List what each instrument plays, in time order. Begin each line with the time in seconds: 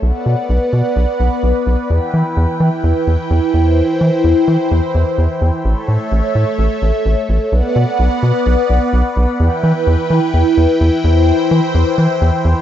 0.02 analog synth bass B1, analog synth pad B3 B4 D5 F#5
0.26 analog synth bass B2
0.49 analog synth bass B1
0.73 analog synth bass B2
0.96 analog synth bass B1
1.20 analog synth bass B1
1.43 analog synth bass B1
1.67 analog synth bass B1
1.90 analog synth bass E2, analog synth pad E3 E4 G5
2.14 analog synth bass E3
2.37 analog synth bass E2
2.60 analog synth bass E3
2.84 analog synth bass E2
3.07 analog synth bass E2
3.30 analog synth bass E2
3.54 analog synth bass E2, analog synth pad C5
4.01 analog synth bass E3
4.24 analog synth bass E2
4.48 analog synth bass E3
4.71 analog synth bass E2
4.95 analog synth bass E2
5.18 analog synth bass E2
5.41 analog synth bass E2
5.65 analog synth bass A1, analog synth pad A3 A4 C#5 E5
5.88 analog synth bass A2
6.12 analog synth bass A1
6.35 analog synth bass A2
6.58 analog synth bass A1
6.82 analog synth bass A1
7.06 analog synth bass A1
7.29 analog synth bass A1
7.52 analog synth bass B1, analog synth pad B3 B4 D5 F#5
7.76 analog synth bass B2
7.99 analog synth bass B1
8.23 analog synth bass B2
8.46 analog synth bass B1
8.70 analog synth bass B1
8.93 analog synth bass B1
9.17 analog synth bass B1
9.40 analog synth bass E2, analog synth pad E3 E4 B4 G5
9.63 analog synth bass E3
9.87 analog synth bass E2
10.10 analog synth bass E3
10.34 analog synth bass E2
10.57 analog synth bass E2
10.81 analog synth bass E2
11.04 analog synth bass E2, analog synth pad C5
11.51 analog synth bass E3
11.75 analog synth bass E2
11.98 analog synth bass E3
12.22 analog synth bass E2
12.45 analog synth bass E2